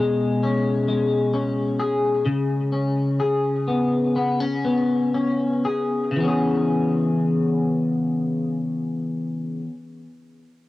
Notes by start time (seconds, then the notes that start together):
Already playing: B2 C#4 G#4
0.00 G#3
0.43 C#4
0.88 G#3
1.34 C#4
1.80 G#4
2.26 C#3
2.72 C#4
3.20 G#4
3.68 B3
4.16 B3
4.40 C#4
4.65 B3
5.14 C#4
5.65 G#4
6.11 C#3
6.16 E3
6.20 B3 C#4
6.28 G#4